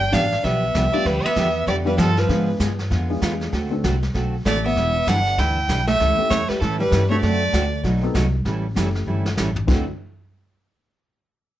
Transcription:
Already playing: G1 D4 G5
0.12 A1 D3 F3 B3 D4 G4 F5, kick, snare, hi-hat pedal
0.32 snare
0.43 B1 D3 F3 B3 D4 G4 E5, brush sweep, kick, snare
0.74 C2 D3 F3 B3 D4 G4, kick, snare, hi-hat pedal
0.92 G3 A3 B3 D4 F4 G4 D5, muted upright bass stroke
1.05 D2 D3 F3 G3 B3 D4 G4 B4, brush sweep, kick, snare
1.25 B3 E5
1.36 E2 D3 F3 B3 D4 G4, kick, snare, hi-hat pedal
1.67 F2 D3 F3 G3 B3 D4 G4 D5, brush sweep, kick, snare
1.84 G3 B3 D4 F4 G4 B4
1.97 G2 D3 F3 B3 D4 G4 A4, kick, snare, hi-hat pedal
2.17 F3 B4, snare
2.27 G#2 D3 G#3 B3 D4 F4 G#4, brush sweep, kick, snare
2.60 G2 D3 G#3 B3 F4 G#4, kick, snare, hi-hat pedal
2.79 snare
2.90 F2 D3 G#3 B3 F4 G#4, brush sweep, kick, snare
3.08 G#3 B3 D4 F4 G#4
3.22 E2 D3 G#3 B3 F4 G#4, kick, snare, hi-hat pedal
3.41 snare
3.52 D2 D3 A3 C4 F#4 A4, brush sweep, kick, snare
3.71 A3 C4 D4 F#4 A4
3.84 C2 D3 A3 C4 F#4 A4, kick, snare, hi-hat pedal
4.03 snare
4.14 B1 D3 A3 C4 F#4 A4, brush sweep, kick, snare
4.45 A1 D3 A3 C4 F#4 A4 D5, kick, snare, hi-hat pedal
4.66 B3 E5
4.75 E1 E3 G3 D4 E4 B4, brush sweep, kick, snare
5.07 G1 E3 G3 D4 E4 B4 F#5, kick, snare, hi-hat pedal
5.26 snare
5.38 D2 E3 G3 D4 E4 B4 G5, brush sweep, kick, snare
5.68 B1 E3 G3 D4 E4 B4, kick, snare, hi-hat pedal
5.88 A3 E5, snare
5.99 C#2 E3 G3 C#4 E4 A4, brush sweep, kick, snare
6.17 A3 C#4 E4 G4 A4, muted upright bass stroke
6.30 E2 E3 G3 A3 C#4 E4 A4 C#5, kick, snare, hi-hat pedal
6.48 G3 B4, muted upright bass stroke, snare
6.60 A2 E3 G3 C#4 E4 A4, brush sweep, kick, snare
6.79 G3 B4
6.91 G2 E3 G3 C#4 E4 A4, kick, snare, hi-hat pedal
7.09 A3 C4 D4 F#4 A4 C#5
7.20 F#2 D3 A3 C4 F#4 A4 D5, brush sweep, kick, snare
7.52 D2 D3 A3 C4 F#4 A4, kick, snare, hi-hat pedal
7.83 B1 B2 F#3 A3 D#4 F#4, brush sweep, kick, snare
8.02 B3 C4 D#4 F#4 A4
8.14 C2 B2 F#3 A3 D#4 F#4, kick, snare, hi-hat pedal
8.45 A1 E3 G3 C#4 E4 A4, brush sweep, kick, snare
8.75 F#1 E3 G3 A3 C#4 E4 G4 A4, kick, snare, hi-hat pedal
8.95 snare
9.07 G1 E3 G3 C#4 E4 A4
9.26 snare
9.37 A1 E3 G3 C#4 E4 A4, snare, hi-hat pedal
9.56 floor tom
9.67 D2 D3 A3 C4 D4 E4 F#4 A4, kick, snare, crash

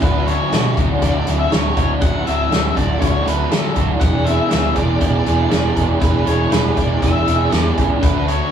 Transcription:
0.01 D2 D3 F#3 A3 D4 F#4 B4, kick, closed hi-hat
0.27 A3 D4 F#4 C#5, closed hi-hat
0.51 B2 F#3 A3 D4 F#4, snare, closed hi-hat
0.76 D2 A3 D4 F#4, kick, closed hi-hat
1.02 D2 D3 F#3 A3 D4 F#4 D5, kick, closed hi-hat
1.26 D2 A3 D4 F#4, closed hi-hat
1.39 E5
1.51 D2 F#3 A3 D4 F#4 C#5, snare, closed hi-hat
1.77 D2 A3 D4 F#4, kick, closed hi-hat
2.01 D2 D3 F#3 A3 D4 F#4 F#5, kick, closed hi-hat
2.26 D2 A3 D4 F#4 E5, closed hi-hat
2.51 D2 F#3 A3 D4 F#4, snare, closed hi-hat
2.76 D2 A3 D4 F#4 D5, kick, closed hi-hat
3.01 D2 D3 F#3 A3 D4 F#4 C#5, kick, closed hi-hat
3.25 D2 A3 D4 F#4 B4, closed hi-hat
3.51 D3 F#3 A3 D4 F#4 A4, snare, closed hi-hat
3.76 D2 A3 D4 F#4, kick, closed hi-hat
4.00 E1 E3 B3 D4 G#4 F#5, kick, closed hi-hat
4.25 B3 D4 G#4 E5, closed hi-hat
4.49 D2 E3 B3 D4 G#4 E5, snare, closed hi-hat
4.75 E1 B3 D4 G#4 D5, kick, closed hi-hat
5.00 E1 E3 B3 D4 G#4 D5, kick, closed hi-hat
5.25 E1 B3 D4 G#4, closed hi-hat
5.51 E1 E3 B3 D4 G#4 D5, snare, closed hi-hat
5.76 E1 B3 D4 G#4, kick, closed hi-hat
6.00 E1 E3 B3 D4 G#4 B4, kick, closed hi-hat
6.26 E1 B3 D4 G#4 C#5, closed hi-hat
6.51 E1 E3 B3 D4 G#4 B4, snare, closed hi-hat
6.77 E1 B3 D4 G#4 D5, kick, closed hi-hat
7.02 E1 E3 B3 D4 G#4 E5, kick, closed hi-hat
7.26 E1 B3 D4 G#4, closed hi-hat
7.51 E2 E3 B3 D4 G#4 D5, snare, closed hi-hat
7.78 C#2 B3 D4 G#4, kick, closed hi-hat
8.02 D2 D3 A3 D4 F#4 B4, kick, closed hi-hat
8.27 A3 D4 F#4 C#5, closed hi-hat

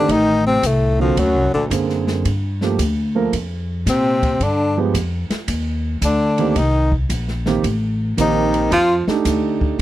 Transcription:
Already playing: D3 D4
0.08 A1 D#3 D#4, kick, ride
0.46 C3 C4
0.63 C2 A2 A3, kick, hi-hat pedal, ride
0.99 F2 D3 F3 A#3 C4 F#4
1.17 D2 F#2 F#3, kick, ride
1.34 C2
1.52 A#1 D2 D3
1.70 F#2 D3 A#3 C4 G#4, kick, hi-hat pedal, ride
1.89 snare
2.07 snare
2.25 G2, kick, ride
2.61 F3 A3 A#3 G4, snare
2.78 D2, kick, hi-hat pedal, ride
3.15 F3 A3 A#3 A#4
3.33 F2, kick, ride
3.86 A#2 C3 C4, kick, snare, hi-hat pedal, ride
4.23 kick, ride
4.40 G2 D3 D4, kick, ride
4.77 F3 G#3 B3 G4
4.94 F2, kick, hi-hat pedal, ride
5.30 muted upright bass stroke, snare, ride
5.48 D#2, kick, ride
6.01 D2 D3 D4, kick, hi-hat pedal, ride
6.38 D#3 A#3 C4 G4, ride
6.55 C2 D#3 D#4, kick, ride
6.92 kick
7.09 A#1, kick, hi-hat pedal, ride
7.28 snare
7.46 D#3 A#3 C4 G4, snare
7.63 A1, kick, ride
8.17 A#1 D#3 A#3 C4 D#4 G4, kick, hi-hat pedal, ride
8.54 ride
8.71 F2 F3 F4, kick, ride
9.07 A3 D4 D#4 G4, muted upright bass stroke, snare
9.25 D2, kick, snare, hi-hat pedal, ride
9.61 kick

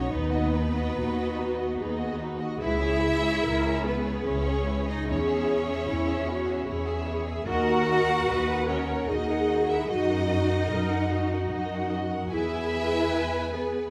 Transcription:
Already playing: C#4 D#4 F#4 C#5 D#5
0.12 D#2 B3 D#4 B4
0.33 F#4 D#5
0.53 D#4 B4
0.76 F#4 D#5
0.96 D#2 D#4 F#4 B4
1.17 F#4 D#5
1.37 D#4 B4
1.58 F#4 D#5
1.78 D#2 D#4 G#4 B4
1.98 F#4 D#5
2.20 D#4 F#4 B4
2.40 F#4 D#5
2.61 C#2 E4 G#4 B4 E5
2.82 G#4 C#5
3.02 E4 B4
3.23 G#4 C#5
3.43 C#2 E4 A#4 B4
3.64 G#4 C#5
3.85 B3 E4 G#4 B4
4.06 G#4 C#5
4.26 C#2 C#4 E4 B4 C#5
4.46 G#4 C#5
4.67 E4 B4
4.86 D#4 G#4 C#5 D#5
5.06 E2 C#4 E4 G#4 C#5
5.29 G#4 E5
5.47 E4 C#5
5.68 G#4 E5
5.88 E2 E4 C#5
6.08 G#4 E5
6.28 E4 F#4 C#5
6.49 G#4 E5
6.67 E2 E4 G#4 C#5
6.89 G#4 E5
7.08 E4 C#5
7.28 G#4 E5
7.47 D#2 F#4 A#4 D#5 F#5
7.69 A#4 F#5
7.90 F#4 D#5
8.09 A#4 F#5
8.29 D#2 F#4 B4 D#5
8.51 A#4 F#5
8.69 C#4 F#4 A#4 C#5 D#5
8.90 A#4 F#5
9.09 D#2 D#4 F#4 G#4 D#5
9.30 A#4 F#5
9.51 F#4 D#5
9.70 E4 A#4 E5 F#5
9.90 F#2 D#4 F#4 D#5
10.11 A#4 F#5
10.31 F#4 D#5
10.51 A#4 F#5
10.71 F#2 F#4 A#4 D#5
10.92 A#4 F#5
11.12 F#4 D#5
11.33 A#4 F#5
11.51 F#2 F#4 D#5
11.74 A#4 F#5
11.93 F#4 D#5
12.12 A#4 F#5
12.31 E2 E4 G#4 B4 E5 G#5
13.12 B4
13.52 B3 G#4 B4

